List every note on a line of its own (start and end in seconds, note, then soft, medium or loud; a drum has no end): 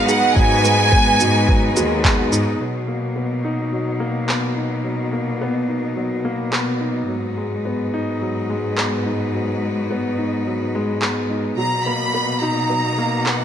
0.00 0.35 F#3 medium
0.00 0.64 G#3 loud
0.00 2.57 G#3 medium
0.00 0.92 B3 loud
0.00 0.08 D#4 loud
0.00 2.57 D#4 medium
0.00 2.57 F#4 medium
0.00 2.57 B4 medium
0.08 0.35 D#4 medium
0.08 0.14 G#4 medium
0.08 0.34 F#5 loud
0.08 shaker medium
0.35 1.12 G#2 loud
0.35 0.63 F#3 medium
0.35 0.45 F#4 medium
0.35 2.04 G#5 loud
0.35 kick loud
0.64 0.91 G#3 medium
0.64 0.73 B4 medium
0.64 shaker medium
0.92 1.19 B3 loud
0.92 0.98 G#4 medium
0.92 kick loud
1.20 1.68 G#2 medium
1.20 1.36 D#4 medium
1.20 1.29 F#4 medium
1.20 shaker medium
1.48 1.75 F#3 medium
1.48 1.57 B4 medium
1.48 kick loud
1.76 2.24 D#2 medium
1.76 2.03 G#3 loud
1.76 1.85 F#4 loud
1.76 shaker medium
2.04 2.31 B3 loud
2.04 2.10 G#4 medium
2.04 kick loud
2.04 clap medium
2.19 2.24 F#5 medium
2.32 2.50 G#2 medium
2.32 2.59 D#4 medium
2.32 2.41 D#5 medium
2.32 shaker medium
2.60 7.06 B2 medium
2.60 2.87 F#3 medium
2.60 11.54 D#4 medium
2.60 7.06 A#4 medium
2.88 3.15 A#3 medium
3.16 3.32 B3 medium
3.45 3.71 D#4 medium
3.72 3.89 F#3 medium
4.00 4.27 A#3 medium
4.29 4.55 B3 medium
4.29 clap medium
4.57 4.83 D#4 medium
4.84 5.11 F#3 medium
5.13 5.39 A#3 medium
5.41 5.68 B3 medium
5.69 5.85 D#4 medium
5.97 6.23 F#3 medium
6.25 6.52 A#3 medium
6.52 6.79 B3 medium
6.52 clap medium
6.81 7.07 D#4 medium
7.08 11.55 G#2 medium
7.08 7.35 F#3 medium
7.08 11.54 G#3 medium
7.08 11.54 F#4 medium
7.08 11.54 B4 medium
7.37 7.64 G#3 medium
7.65 7.81 B3 medium
7.94 8.20 D#4 medium
8.22 8.38 F#3 medium
8.50 8.76 G#3 medium
8.77 9.04 B3 medium
8.77 clap medium
9.06 9.32 D#4 medium
9.34 9.60 F#3 medium
9.62 9.89 G#3 medium
9.91 10.17 B3 medium
10.18 10.34 D#4 medium
10.47 10.73 F#3 medium
10.75 11.01 G#3 medium
11.02 11.29 B3 medium
11.02 clap medium
11.30 11.56 D#4 medium
11.57 13.45 B2 medium
11.57 11.85 F#3 medium
11.57 13.45 A#3 medium
11.57 13.45 D#4 medium
11.57 11.66 F#4 medium
11.57 11.84 A#5 medium
11.85 12.13 A#3 medium
11.85 11.94 B4 medium
11.85 12.42 B5 loud
12.14 12.30 B3 medium
12.14 12.19 A#4 medium
12.41 12.69 D#4 medium
12.41 12.50 F#4 medium
12.41 13.25 A#5 medium
12.70 12.86 F#3 medium
12.70 12.78 B4 medium
12.98 13.25 A#3 medium
12.98 13.03 A#4 medium
13.25 13.45 B3 medium
13.25 13.35 F#4 medium
13.25 13.45 F#5 medium
13.25 clap medium